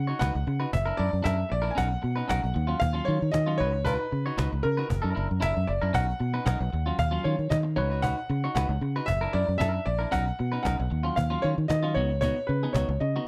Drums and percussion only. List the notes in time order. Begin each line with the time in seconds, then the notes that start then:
0.09 cajon slap
0.21 cajon bass, cajon slap
0.61 cajon slap
0.73 cajon bass
1.14 cajon slap
1.25 cajon bass, cajon slap
1.65 cajon slap
1.78 cajon bass
2.18 cajon slap
2.30 cajon bass, cajon slap
2.70 cajon slap
2.82 cajon bass
3.21 cajon slap
3.34 cajon bass, cajon slap
3.73 cajon slap
3.86 cajon bass
4.26 cajon slap
4.38 cajon bass, cajon slap
4.78 cajon slap
4.90 cajon bass
5.30 cajon slap
5.42 cajon bass, cajon slap
5.82 cajon slap
5.94 cajon bass
6.35 cajon slap
6.46 cajon bass, cajon slap
6.87 cajon slap
6.99 cajon bass
7.39 cajon slap
7.51 cajon bass, cajon slap
7.92 cajon slap
8.03 cajon bass
8.44 cajon slap
8.56 cajon bass, cajon slap
8.96 cajon slap
9.08 cajon bass
9.48 cajon slap
9.60 cajon bass, cajon slap
10.01 cajon slap
10.13 cajon bass
10.53 cajon slap
10.65 cajon bass, cajon slap
11.06 cajon slap
11.17 cajon bass
11.58 cajon slap
11.70 cajon bass, cajon slap
12.10 cajon slap
12.22 cajon bass
12.63 cajon slap
12.74 cajon bass, cajon slap
13.15 cajon slap